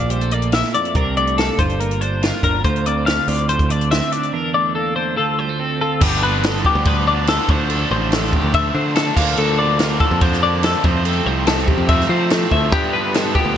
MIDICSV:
0, 0, Header, 1, 6, 480
1, 0, Start_track
1, 0, Key_signature, -1, "minor"
1, 0, Tempo, 422535
1, 1081, Time_signature, 4, 2, 24, 8
1, 6360, Tempo, 419287
1, 15487, End_track
2, 0, Start_track
2, 0, Title_t, "Clean electric guitar"
2, 0, Program_c, 0, 27
2, 0, Note_on_c, 0, 74, 70
2, 126, Note_off_c, 0, 74, 0
2, 126, Note_on_c, 0, 72, 75
2, 366, Note_off_c, 0, 72, 0
2, 366, Note_on_c, 0, 74, 65
2, 600, Note_off_c, 0, 74, 0
2, 600, Note_on_c, 0, 76, 74
2, 841, Note_off_c, 0, 76, 0
2, 846, Note_on_c, 0, 74, 67
2, 1086, Note_off_c, 0, 74, 0
2, 1086, Note_on_c, 0, 70, 84
2, 1324, Note_off_c, 0, 70, 0
2, 1331, Note_on_c, 0, 74, 72
2, 1567, Note_off_c, 0, 74, 0
2, 1567, Note_on_c, 0, 69, 73
2, 1805, Note_off_c, 0, 69, 0
2, 1806, Note_on_c, 0, 72, 75
2, 2044, Note_off_c, 0, 72, 0
2, 2044, Note_on_c, 0, 70, 75
2, 2285, Note_off_c, 0, 70, 0
2, 2285, Note_on_c, 0, 72, 67
2, 2528, Note_off_c, 0, 72, 0
2, 2528, Note_on_c, 0, 70, 78
2, 2756, Note_off_c, 0, 70, 0
2, 2770, Note_on_c, 0, 70, 68
2, 3003, Note_off_c, 0, 70, 0
2, 3007, Note_on_c, 0, 72, 82
2, 3250, Note_off_c, 0, 72, 0
2, 3250, Note_on_c, 0, 74, 70
2, 3476, Note_off_c, 0, 74, 0
2, 3481, Note_on_c, 0, 77, 78
2, 3729, Note_off_c, 0, 77, 0
2, 3729, Note_on_c, 0, 74, 76
2, 3962, Note_off_c, 0, 74, 0
2, 3966, Note_on_c, 0, 72, 80
2, 4211, Note_off_c, 0, 72, 0
2, 4211, Note_on_c, 0, 74, 71
2, 4441, Note_off_c, 0, 74, 0
2, 4446, Note_on_c, 0, 76, 77
2, 4685, Note_off_c, 0, 76, 0
2, 4685, Note_on_c, 0, 74, 70
2, 4917, Note_off_c, 0, 74, 0
2, 4917, Note_on_c, 0, 70, 81
2, 5157, Note_off_c, 0, 70, 0
2, 5161, Note_on_c, 0, 74, 72
2, 5395, Note_off_c, 0, 74, 0
2, 5399, Note_on_c, 0, 69, 78
2, 5629, Note_off_c, 0, 69, 0
2, 5633, Note_on_c, 0, 72, 76
2, 5873, Note_off_c, 0, 72, 0
2, 5878, Note_on_c, 0, 69, 76
2, 6121, Note_off_c, 0, 69, 0
2, 6121, Note_on_c, 0, 72, 74
2, 6360, Note_off_c, 0, 72, 0
2, 6360, Note_on_c, 0, 69, 77
2, 6594, Note_off_c, 0, 69, 0
2, 6607, Note_on_c, 0, 69, 71
2, 6843, Note_off_c, 0, 69, 0
2, 6843, Note_on_c, 0, 67, 95
2, 7082, Note_off_c, 0, 67, 0
2, 7087, Note_on_c, 0, 71, 81
2, 7334, Note_off_c, 0, 71, 0
2, 7334, Note_on_c, 0, 69, 90
2, 7568, Note_off_c, 0, 69, 0
2, 7575, Note_on_c, 0, 67, 82
2, 7814, Note_off_c, 0, 67, 0
2, 7814, Note_on_c, 0, 71, 88
2, 8046, Note_off_c, 0, 71, 0
2, 8051, Note_on_c, 0, 74, 85
2, 8286, Note_off_c, 0, 74, 0
2, 8295, Note_on_c, 0, 69, 89
2, 8538, Note_off_c, 0, 69, 0
2, 8538, Note_on_c, 0, 72, 80
2, 8768, Note_off_c, 0, 72, 0
2, 8768, Note_on_c, 0, 69, 97
2, 9005, Note_off_c, 0, 69, 0
2, 9012, Note_on_c, 0, 72, 84
2, 9259, Note_off_c, 0, 72, 0
2, 9259, Note_on_c, 0, 69, 90
2, 9496, Note_off_c, 0, 69, 0
2, 9496, Note_on_c, 0, 67, 85
2, 9728, Note_off_c, 0, 67, 0
2, 9735, Note_on_c, 0, 76, 86
2, 9967, Note_off_c, 0, 76, 0
2, 9971, Note_on_c, 0, 72, 79
2, 10200, Note_off_c, 0, 72, 0
2, 10204, Note_on_c, 0, 69, 91
2, 10442, Note_off_c, 0, 69, 0
2, 10443, Note_on_c, 0, 77, 80
2, 10681, Note_off_c, 0, 77, 0
2, 10689, Note_on_c, 0, 69, 92
2, 10923, Note_on_c, 0, 74, 83
2, 10924, Note_off_c, 0, 69, 0
2, 11165, Note_off_c, 0, 74, 0
2, 11165, Note_on_c, 0, 70, 90
2, 11398, Note_off_c, 0, 70, 0
2, 11402, Note_on_c, 0, 69, 88
2, 11645, Note_off_c, 0, 69, 0
2, 11645, Note_on_c, 0, 72, 88
2, 11882, Note_off_c, 0, 72, 0
2, 11890, Note_on_c, 0, 74, 82
2, 12124, Note_off_c, 0, 74, 0
2, 12130, Note_on_c, 0, 69, 83
2, 12369, Note_off_c, 0, 69, 0
2, 12369, Note_on_c, 0, 72, 78
2, 12607, Note_off_c, 0, 72, 0
2, 12607, Note_on_c, 0, 69, 93
2, 12847, Note_off_c, 0, 69, 0
2, 12847, Note_on_c, 0, 72, 81
2, 13083, Note_off_c, 0, 72, 0
2, 13085, Note_on_c, 0, 69, 90
2, 13321, Note_off_c, 0, 69, 0
2, 13321, Note_on_c, 0, 67, 86
2, 13560, Note_off_c, 0, 67, 0
2, 13562, Note_on_c, 0, 76, 88
2, 13800, Note_off_c, 0, 76, 0
2, 13802, Note_on_c, 0, 72, 81
2, 14043, Note_off_c, 0, 72, 0
2, 14043, Note_on_c, 0, 69, 87
2, 14281, Note_off_c, 0, 69, 0
2, 14283, Note_on_c, 0, 76, 71
2, 14519, Note_on_c, 0, 67, 92
2, 14521, Note_off_c, 0, 76, 0
2, 14756, Note_on_c, 0, 71, 84
2, 14759, Note_off_c, 0, 67, 0
2, 15000, Note_off_c, 0, 71, 0
2, 15000, Note_on_c, 0, 69, 88
2, 15230, Note_off_c, 0, 69, 0
2, 15235, Note_on_c, 0, 67, 85
2, 15476, Note_off_c, 0, 67, 0
2, 15487, End_track
3, 0, Start_track
3, 0, Title_t, "Clean electric guitar"
3, 0, Program_c, 1, 27
3, 0, Note_on_c, 1, 46, 61
3, 0, Note_on_c, 1, 62, 56
3, 116, Note_on_c, 1, 55, 57
3, 243, Note_off_c, 1, 55, 0
3, 243, Note_on_c, 1, 57, 46
3, 378, Note_on_c, 1, 58, 54
3, 611, Note_off_c, 1, 62, 0
3, 615, Note_on_c, 1, 64, 55
3, 844, Note_off_c, 1, 46, 0
3, 848, Note_on_c, 1, 41, 57
3, 1056, Note_off_c, 1, 41, 0
3, 1060, Note_off_c, 1, 64, 0
3, 1062, Note_off_c, 1, 58, 0
3, 1083, Note_off_c, 1, 57, 0
3, 1088, Note_on_c, 1, 48, 67
3, 1095, Note_on_c, 1, 62, 62
3, 1340, Note_on_c, 1, 57, 57
3, 1580, Note_on_c, 1, 58, 56
3, 1777, Note_off_c, 1, 48, 0
3, 1782, Note_off_c, 1, 58, 0
3, 1808, Note_on_c, 1, 43, 63
3, 1811, Note_off_c, 1, 62, 0
3, 1816, Note_on_c, 1, 65, 59
3, 1842, Note_off_c, 1, 57, 0
3, 2048, Note_on_c, 1, 58, 55
3, 2296, Note_on_c, 1, 62, 60
3, 2513, Note_off_c, 1, 65, 0
3, 2526, Note_on_c, 1, 65, 56
3, 2760, Note_on_c, 1, 50, 61
3, 2973, Note_off_c, 1, 50, 0
3, 2976, Note_off_c, 1, 65, 0
3, 2977, Note_off_c, 1, 43, 0
3, 2977, Note_off_c, 1, 58, 0
3, 2998, Note_on_c, 1, 38, 71
3, 3008, Note_on_c, 1, 65, 52
3, 3248, Note_on_c, 1, 60, 61
3, 3282, Note_off_c, 1, 62, 0
3, 3489, Note_on_c, 1, 62, 58
3, 3715, Note_off_c, 1, 65, 0
3, 3729, Note_on_c, 1, 65, 51
3, 3960, Note_on_c, 1, 45, 62
3, 4192, Note_on_c, 1, 50, 62
3, 4202, Note_off_c, 1, 45, 0
3, 4427, Note_off_c, 1, 60, 0
3, 4441, Note_on_c, 1, 60, 60
3, 4674, Note_off_c, 1, 62, 0
3, 4678, Note_on_c, 1, 62, 59
3, 4893, Note_off_c, 1, 60, 0
3, 4897, Note_off_c, 1, 65, 0
3, 4912, Note_off_c, 1, 38, 0
3, 4917, Note_on_c, 1, 40, 71
3, 4927, Note_off_c, 1, 62, 0
3, 4927, Note_on_c, 1, 62, 66
3, 5166, Note_on_c, 1, 57, 60
3, 5414, Note_on_c, 1, 58, 60
3, 5640, Note_off_c, 1, 62, 0
3, 5653, Note_on_c, 1, 62, 55
3, 5849, Note_off_c, 1, 40, 0
3, 5854, Note_off_c, 1, 57, 0
3, 5858, Note_off_c, 1, 58, 0
3, 5882, Note_on_c, 1, 38, 74
3, 5883, Note_off_c, 1, 62, 0
3, 5887, Note_on_c, 1, 65, 69
3, 6124, Note_on_c, 1, 55, 59
3, 6239, Note_off_c, 1, 55, 0
3, 6239, Note_on_c, 1, 57, 53
3, 6360, Note_on_c, 1, 60, 60
3, 6592, Note_off_c, 1, 65, 0
3, 6605, Note_on_c, 1, 65, 59
3, 6812, Note_off_c, 1, 60, 0
3, 6814, Note_off_c, 1, 65, 0
3, 6834, Note_off_c, 1, 50, 0
3, 6840, Note_off_c, 1, 57, 0
3, 6841, Note_off_c, 1, 38, 0
3, 15487, End_track
4, 0, Start_track
4, 0, Title_t, "Overdriven electric guitar"
4, 0, Program_c, 2, 29
4, 6832, Note_on_c, 2, 43, 92
4, 6843, Note_on_c, 2, 50, 96
4, 6849, Note_on_c, 2, 53, 89
4, 6860, Note_on_c, 2, 59, 98
4, 6864, Note_on_c, 2, 62, 98
4, 8023, Note_off_c, 2, 43, 0
4, 8029, Note_off_c, 2, 50, 0
4, 8036, Note_off_c, 2, 62, 0
4, 8037, Note_off_c, 2, 59, 0
4, 8040, Note_on_c, 2, 62, 88
4, 8051, Note_off_c, 2, 53, 0
4, 8051, Note_on_c, 2, 59, 90
4, 8056, Note_on_c, 2, 53, 79
4, 8067, Note_on_c, 2, 50, 77
4, 8074, Note_on_c, 2, 43, 65
4, 8268, Note_off_c, 2, 43, 0
4, 8272, Note_off_c, 2, 59, 0
4, 8277, Note_off_c, 2, 50, 0
4, 8281, Note_on_c, 2, 43, 77
4, 8291, Note_on_c, 2, 50, 85
4, 8292, Note_off_c, 2, 53, 0
4, 8297, Note_on_c, 2, 53, 91
4, 8307, Note_on_c, 2, 59, 82
4, 8313, Note_off_c, 2, 62, 0
4, 8317, Note_on_c, 2, 62, 89
4, 8504, Note_off_c, 2, 50, 0
4, 8507, Note_off_c, 2, 43, 0
4, 8518, Note_on_c, 2, 50, 92
4, 8520, Note_off_c, 2, 59, 0
4, 8528, Note_off_c, 2, 53, 0
4, 8533, Note_on_c, 2, 53, 96
4, 8543, Note_on_c, 2, 57, 99
4, 8546, Note_off_c, 2, 62, 0
4, 8551, Note_on_c, 2, 62, 98
4, 9704, Note_off_c, 2, 50, 0
4, 9720, Note_on_c, 2, 50, 85
4, 9726, Note_off_c, 2, 53, 0
4, 9731, Note_on_c, 2, 53, 85
4, 9738, Note_off_c, 2, 57, 0
4, 9742, Note_on_c, 2, 57, 80
4, 9747, Note_off_c, 2, 62, 0
4, 9752, Note_on_c, 2, 62, 84
4, 9945, Note_off_c, 2, 50, 0
4, 9950, Note_off_c, 2, 62, 0
4, 9955, Note_on_c, 2, 62, 87
4, 9966, Note_off_c, 2, 57, 0
4, 9971, Note_on_c, 2, 57, 93
4, 9976, Note_off_c, 2, 53, 0
4, 9980, Note_on_c, 2, 53, 80
4, 9990, Note_on_c, 2, 50, 74
4, 10418, Note_off_c, 2, 50, 0
4, 10432, Note_on_c, 2, 50, 97
4, 10443, Note_off_c, 2, 53, 0
4, 10447, Note_on_c, 2, 53, 105
4, 10454, Note_off_c, 2, 57, 0
4, 10459, Note_on_c, 2, 58, 103
4, 10461, Note_off_c, 2, 62, 0
4, 10466, Note_on_c, 2, 62, 98
4, 11616, Note_off_c, 2, 50, 0
4, 11629, Note_on_c, 2, 50, 80
4, 11634, Note_off_c, 2, 58, 0
4, 11641, Note_off_c, 2, 53, 0
4, 11645, Note_on_c, 2, 53, 85
4, 11659, Note_on_c, 2, 58, 83
4, 11663, Note_off_c, 2, 62, 0
4, 11668, Note_on_c, 2, 62, 94
4, 11860, Note_off_c, 2, 50, 0
4, 11874, Note_off_c, 2, 58, 0
4, 11877, Note_off_c, 2, 62, 0
4, 11882, Note_on_c, 2, 62, 91
4, 11895, Note_on_c, 2, 58, 82
4, 11899, Note_off_c, 2, 53, 0
4, 11903, Note_on_c, 2, 53, 73
4, 11915, Note_on_c, 2, 50, 80
4, 12352, Note_off_c, 2, 58, 0
4, 12361, Note_on_c, 2, 41, 93
4, 12362, Note_off_c, 2, 50, 0
4, 12369, Note_on_c, 2, 48, 90
4, 12377, Note_off_c, 2, 53, 0
4, 12381, Note_on_c, 2, 53, 89
4, 12387, Note_on_c, 2, 57, 99
4, 12389, Note_off_c, 2, 62, 0
4, 12394, Note_on_c, 2, 60, 93
4, 13545, Note_off_c, 2, 41, 0
4, 13549, Note_off_c, 2, 48, 0
4, 13557, Note_on_c, 2, 41, 85
4, 13562, Note_off_c, 2, 60, 0
4, 13570, Note_on_c, 2, 48, 84
4, 13572, Note_off_c, 2, 53, 0
4, 13577, Note_on_c, 2, 53, 86
4, 13580, Note_off_c, 2, 57, 0
4, 13585, Note_on_c, 2, 57, 90
4, 13593, Note_on_c, 2, 60, 82
4, 13784, Note_off_c, 2, 41, 0
4, 13786, Note_off_c, 2, 60, 0
4, 13790, Note_off_c, 2, 48, 0
4, 13800, Note_on_c, 2, 60, 92
4, 13808, Note_off_c, 2, 57, 0
4, 13813, Note_on_c, 2, 57, 89
4, 13816, Note_off_c, 2, 53, 0
4, 13821, Note_on_c, 2, 53, 77
4, 13829, Note_on_c, 2, 48, 76
4, 13837, Note_on_c, 2, 41, 72
4, 14265, Note_off_c, 2, 60, 0
4, 14279, Note_off_c, 2, 48, 0
4, 14283, Note_off_c, 2, 41, 0
4, 14515, Note_on_c, 2, 43, 88
4, 14527, Note_on_c, 2, 50, 90
4, 14531, Note_off_c, 2, 53, 0
4, 14536, Note_off_c, 2, 57, 0
4, 14536, Note_on_c, 2, 53, 99
4, 14541, Note_on_c, 2, 59, 94
4, 14547, Note_on_c, 2, 62, 107
4, 15487, Note_off_c, 2, 43, 0
4, 15487, Note_off_c, 2, 50, 0
4, 15487, Note_off_c, 2, 53, 0
4, 15487, Note_off_c, 2, 59, 0
4, 15487, Note_off_c, 2, 62, 0
4, 15487, End_track
5, 0, Start_track
5, 0, Title_t, "Picked electric bass"
5, 0, Program_c, 3, 34
5, 0, Note_on_c, 3, 34, 87
5, 701, Note_off_c, 3, 34, 0
5, 1081, Note_on_c, 3, 36, 89
5, 1697, Note_off_c, 3, 36, 0
5, 1800, Note_on_c, 3, 31, 78
5, 2623, Note_off_c, 3, 31, 0
5, 2761, Note_on_c, 3, 31, 91
5, 2967, Note_off_c, 3, 31, 0
5, 3007, Note_on_c, 3, 38, 88
5, 3621, Note_off_c, 3, 38, 0
5, 3724, Note_on_c, 3, 38, 88
5, 4544, Note_off_c, 3, 38, 0
5, 6836, Note_on_c, 3, 31, 99
5, 7557, Note_off_c, 3, 31, 0
5, 7681, Note_on_c, 3, 38, 99
5, 8399, Note_off_c, 3, 38, 0
5, 8520, Note_on_c, 3, 38, 100
5, 8930, Note_off_c, 3, 38, 0
5, 9005, Note_on_c, 3, 33, 103
5, 9516, Note_off_c, 3, 33, 0
5, 9604, Note_on_c, 3, 38, 85
5, 9910, Note_off_c, 3, 38, 0
5, 9963, Note_on_c, 3, 50, 90
5, 10372, Note_off_c, 3, 50, 0
5, 10443, Note_on_c, 3, 38, 97
5, 10646, Note_off_c, 3, 38, 0
5, 10682, Note_on_c, 3, 38, 101
5, 11399, Note_off_c, 3, 38, 0
5, 11527, Note_on_c, 3, 41, 97
5, 12241, Note_off_c, 3, 41, 0
5, 12363, Note_on_c, 3, 41, 103
5, 12772, Note_off_c, 3, 41, 0
5, 12840, Note_on_c, 3, 36, 99
5, 13352, Note_off_c, 3, 36, 0
5, 13432, Note_on_c, 3, 41, 84
5, 13743, Note_off_c, 3, 41, 0
5, 13794, Note_on_c, 3, 53, 88
5, 14207, Note_off_c, 3, 53, 0
5, 14277, Note_on_c, 3, 38, 91
5, 14515, Note_off_c, 3, 38, 0
5, 14515, Note_on_c, 3, 43, 100
5, 15235, Note_off_c, 3, 43, 0
5, 15345, Note_on_c, 3, 38, 96
5, 15487, Note_off_c, 3, 38, 0
5, 15487, End_track
6, 0, Start_track
6, 0, Title_t, "Drums"
6, 113, Note_on_c, 9, 42, 76
6, 227, Note_off_c, 9, 42, 0
6, 240, Note_on_c, 9, 42, 38
6, 354, Note_off_c, 9, 42, 0
6, 355, Note_on_c, 9, 42, 58
6, 469, Note_off_c, 9, 42, 0
6, 477, Note_on_c, 9, 42, 38
6, 590, Note_off_c, 9, 42, 0
6, 592, Note_on_c, 9, 42, 75
6, 604, Note_on_c, 9, 38, 99
6, 706, Note_off_c, 9, 42, 0
6, 718, Note_off_c, 9, 38, 0
6, 718, Note_on_c, 9, 42, 37
6, 730, Note_on_c, 9, 38, 31
6, 831, Note_off_c, 9, 42, 0
6, 844, Note_off_c, 9, 38, 0
6, 844, Note_on_c, 9, 42, 60
6, 957, Note_off_c, 9, 42, 0
6, 966, Note_on_c, 9, 42, 35
6, 1079, Note_off_c, 9, 42, 0
6, 1080, Note_on_c, 9, 36, 91
6, 1082, Note_on_c, 9, 42, 72
6, 1193, Note_off_c, 9, 36, 0
6, 1196, Note_off_c, 9, 42, 0
6, 1326, Note_on_c, 9, 42, 57
6, 1440, Note_off_c, 9, 42, 0
6, 1446, Note_on_c, 9, 42, 37
6, 1559, Note_off_c, 9, 42, 0
6, 1567, Note_on_c, 9, 42, 72
6, 1580, Note_on_c, 9, 38, 93
6, 1681, Note_off_c, 9, 42, 0
6, 1693, Note_off_c, 9, 38, 0
6, 1804, Note_on_c, 9, 36, 92
6, 1806, Note_on_c, 9, 42, 54
6, 1917, Note_off_c, 9, 36, 0
6, 1920, Note_off_c, 9, 42, 0
6, 1926, Note_on_c, 9, 42, 32
6, 2040, Note_off_c, 9, 42, 0
6, 2048, Note_on_c, 9, 42, 66
6, 2162, Note_off_c, 9, 42, 0
6, 2170, Note_on_c, 9, 42, 36
6, 2283, Note_off_c, 9, 42, 0
6, 2286, Note_on_c, 9, 42, 54
6, 2399, Note_off_c, 9, 42, 0
6, 2529, Note_on_c, 9, 42, 72
6, 2542, Note_on_c, 9, 38, 100
6, 2643, Note_off_c, 9, 42, 0
6, 2655, Note_off_c, 9, 38, 0
6, 2763, Note_on_c, 9, 36, 67
6, 2769, Note_on_c, 9, 42, 56
6, 2877, Note_off_c, 9, 36, 0
6, 2883, Note_off_c, 9, 42, 0
6, 3005, Note_on_c, 9, 36, 96
6, 3005, Note_on_c, 9, 42, 69
6, 3118, Note_off_c, 9, 36, 0
6, 3119, Note_off_c, 9, 42, 0
6, 3133, Note_on_c, 9, 42, 33
6, 3247, Note_off_c, 9, 42, 0
6, 3248, Note_on_c, 9, 42, 57
6, 3362, Note_off_c, 9, 42, 0
6, 3486, Note_on_c, 9, 42, 69
6, 3499, Note_on_c, 9, 38, 95
6, 3600, Note_off_c, 9, 42, 0
6, 3612, Note_off_c, 9, 38, 0
6, 3724, Note_on_c, 9, 46, 66
6, 3838, Note_off_c, 9, 46, 0
6, 3850, Note_on_c, 9, 42, 37
6, 3962, Note_off_c, 9, 42, 0
6, 3962, Note_on_c, 9, 42, 72
6, 4076, Note_off_c, 9, 42, 0
6, 4083, Note_on_c, 9, 36, 80
6, 4087, Note_on_c, 9, 42, 41
6, 4196, Note_off_c, 9, 36, 0
6, 4200, Note_off_c, 9, 42, 0
6, 4204, Note_on_c, 9, 42, 61
6, 4318, Note_off_c, 9, 42, 0
6, 4329, Note_on_c, 9, 42, 39
6, 4443, Note_off_c, 9, 42, 0
6, 4446, Note_on_c, 9, 42, 84
6, 4459, Note_on_c, 9, 38, 98
6, 4560, Note_off_c, 9, 42, 0
6, 4570, Note_on_c, 9, 42, 40
6, 4572, Note_off_c, 9, 38, 0
6, 4683, Note_off_c, 9, 42, 0
6, 4684, Note_on_c, 9, 42, 61
6, 4798, Note_off_c, 9, 42, 0
6, 4807, Note_on_c, 9, 42, 37
6, 4921, Note_off_c, 9, 42, 0
6, 6834, Note_on_c, 9, 49, 111
6, 6834, Note_on_c, 9, 57, 60
6, 6837, Note_on_c, 9, 36, 107
6, 6948, Note_off_c, 9, 49, 0
6, 6948, Note_off_c, 9, 57, 0
6, 6951, Note_off_c, 9, 36, 0
6, 7318, Note_on_c, 9, 57, 59
6, 7330, Note_on_c, 9, 38, 113
6, 7432, Note_off_c, 9, 57, 0
6, 7445, Note_off_c, 9, 38, 0
6, 7451, Note_on_c, 9, 38, 32
6, 7560, Note_on_c, 9, 36, 80
6, 7565, Note_off_c, 9, 38, 0
6, 7674, Note_off_c, 9, 36, 0
6, 7796, Note_on_c, 9, 57, 66
6, 7801, Note_on_c, 9, 36, 115
6, 7911, Note_off_c, 9, 57, 0
6, 7915, Note_off_c, 9, 36, 0
6, 8278, Note_on_c, 9, 57, 77
6, 8290, Note_on_c, 9, 38, 116
6, 8392, Note_off_c, 9, 57, 0
6, 8405, Note_off_c, 9, 38, 0
6, 8523, Note_on_c, 9, 36, 113
6, 8638, Note_off_c, 9, 36, 0
6, 8763, Note_on_c, 9, 57, 67
6, 8877, Note_off_c, 9, 57, 0
6, 9244, Note_on_c, 9, 57, 61
6, 9257, Note_on_c, 9, 38, 108
6, 9359, Note_off_c, 9, 57, 0
6, 9372, Note_off_c, 9, 38, 0
6, 9386, Note_on_c, 9, 38, 35
6, 9487, Note_on_c, 9, 36, 80
6, 9501, Note_off_c, 9, 38, 0
6, 9602, Note_off_c, 9, 36, 0
6, 9727, Note_on_c, 9, 36, 117
6, 9730, Note_on_c, 9, 57, 66
6, 9841, Note_off_c, 9, 36, 0
6, 9844, Note_off_c, 9, 57, 0
6, 10204, Note_on_c, 9, 57, 66
6, 10217, Note_on_c, 9, 38, 116
6, 10319, Note_off_c, 9, 57, 0
6, 10331, Note_off_c, 9, 38, 0
6, 10445, Note_on_c, 9, 36, 110
6, 10450, Note_on_c, 9, 57, 110
6, 10559, Note_off_c, 9, 36, 0
6, 10564, Note_off_c, 9, 57, 0
6, 10682, Note_on_c, 9, 57, 64
6, 10796, Note_off_c, 9, 57, 0
6, 11159, Note_on_c, 9, 57, 62
6, 11172, Note_on_c, 9, 38, 111
6, 11274, Note_off_c, 9, 57, 0
6, 11286, Note_off_c, 9, 38, 0
6, 11402, Note_on_c, 9, 36, 89
6, 11517, Note_off_c, 9, 36, 0
6, 11643, Note_on_c, 9, 36, 113
6, 11643, Note_on_c, 9, 57, 63
6, 11757, Note_off_c, 9, 57, 0
6, 11758, Note_off_c, 9, 36, 0
6, 11774, Note_on_c, 9, 38, 36
6, 11888, Note_off_c, 9, 38, 0
6, 12120, Note_on_c, 9, 57, 72
6, 12132, Note_on_c, 9, 38, 113
6, 12234, Note_off_c, 9, 57, 0
6, 12247, Note_off_c, 9, 38, 0
6, 12361, Note_on_c, 9, 36, 110
6, 12475, Note_off_c, 9, 36, 0
6, 12602, Note_on_c, 9, 57, 66
6, 12716, Note_off_c, 9, 57, 0
6, 13079, Note_on_c, 9, 57, 68
6, 13092, Note_on_c, 9, 38, 105
6, 13193, Note_off_c, 9, 57, 0
6, 13206, Note_off_c, 9, 38, 0
6, 13213, Note_on_c, 9, 38, 31
6, 13320, Note_on_c, 9, 36, 84
6, 13328, Note_off_c, 9, 38, 0
6, 13434, Note_off_c, 9, 36, 0
6, 13560, Note_on_c, 9, 36, 116
6, 13560, Note_on_c, 9, 57, 64
6, 13674, Note_off_c, 9, 57, 0
6, 13675, Note_off_c, 9, 36, 0
6, 13693, Note_on_c, 9, 38, 36
6, 13808, Note_off_c, 9, 38, 0
6, 14035, Note_on_c, 9, 57, 66
6, 14048, Note_on_c, 9, 38, 122
6, 14150, Note_off_c, 9, 57, 0
6, 14162, Note_off_c, 9, 38, 0
6, 14278, Note_on_c, 9, 36, 82
6, 14392, Note_off_c, 9, 36, 0
6, 14518, Note_on_c, 9, 36, 110
6, 14522, Note_on_c, 9, 57, 61
6, 14632, Note_off_c, 9, 36, 0
6, 14637, Note_off_c, 9, 57, 0
6, 14998, Note_on_c, 9, 57, 63
6, 15011, Note_on_c, 9, 38, 117
6, 15113, Note_off_c, 9, 57, 0
6, 15125, Note_off_c, 9, 38, 0
6, 15235, Note_on_c, 9, 36, 86
6, 15349, Note_off_c, 9, 36, 0
6, 15487, End_track
0, 0, End_of_file